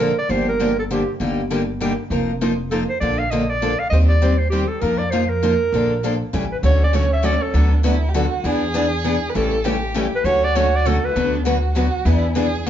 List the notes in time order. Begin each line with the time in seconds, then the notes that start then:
Already playing: A#1 A#4
0.00 D3 F3 A#3 D4 A4
0.19 D5
0.29 G1 D3 F3 A#3 D4 G4 C5
0.49 A#4
0.60 D3 F3 A#3 D4 G4
0.79 A4
0.90 D3 F3 A#3 D4 G4
1.20 G1 D3 G3 A#3 D#4 G4
1.50 D3 G3 A#3 D#4 G4
1.81 D3 G3 A#3 D#4 G4
2.10 F1 F3 A#3 D#4 F4 A#4
2.42 F3 A#3 D#4 F4 A#4
2.71 F3 A#3 D#4 F4 A4 A#4
2.89 C5
3.00 A#1 D3 F3 A#3 D4 A4 D5
3.19 F5
3.31 D3 F3 A#3 D4 A4 D#5
3.50 D5
3.62 D3 F3 A#3 D4 A4
3.79 F5
3.90 D#2 D#3 G3 C4 G4 C5 D#5
4.09 D5
4.22 D#3 G3 C4 G4 C5
4.38 C5
4.50 D#3 G3 C4 G4 C5
4.68 A4
4.81 F2 F3 A#3 D#4 F4 A#4
4.98 D5
5.10 F3 A#3 D#4 F4 A#4 C5
5.30 A#4
5.43 F3 A#3 D#4 F4 A#4
5.72 A#1 D3 F3 A#3 D4 A4
6.03 D3 F3 A#3 D4 A4
6.33 A1 C#3 E3 G3 A3 C#4 E4 G4 A4
6.52 B4
6.63 D2 D3 F#3 A3 C#4 F#4 A4 C#5
6.84 D5
6.93 D3 F#3 A3 C#4 F#4 A4 C#5
7.13 E5
7.23 D3 F#3 A3 C#4 F#4 A4 D5
7.42 A4
7.54 D2 D3 F#3 A3 B3 D4 F#4 A4 B4
7.84 D3 F#3 A3 B3 D4 E4 F#4 A4 B4
8.09 G4
8.14 D3 F#3 A3 B3 D4 F#4 A4 B4
8.44 E2 E3 B3 D4 G#4 B4
8.75 E3 B3 D4 G#4 B4
9.05 E3 B3 D4 G#4 B4
9.29 B4
9.34 A1 C#3 E3 G3 A3 C#4 E4 G4 A4
9.64 C#3 E3 G3 A3 C#4 E4 G4 A4
9.94 C#3 E3 G3 A3 C#4 E4 G4 A4
10.16 B4
10.24 D2 D3 F#3 A3 C#4 F#4 A4 C#5
10.44 D5
10.55 D3 F#3 A3 C#4 F#4 A4 C#5
10.76 D5
10.85 D3 F#3 A3 C#4 F#4 A4
11.05 B4
11.11 E4
11.16 D2 D3 F#3 B3 D4 F#4 B4
11.45 D3 F#3 B3 F#4 B4
11.74 D3 F#3 B3 F#4 B4
12.05 E2 E3 B3 D4 E4 G#4 B4
12.35 E3 B3 D4 G#4 B4
12.66 E3 B3 F#4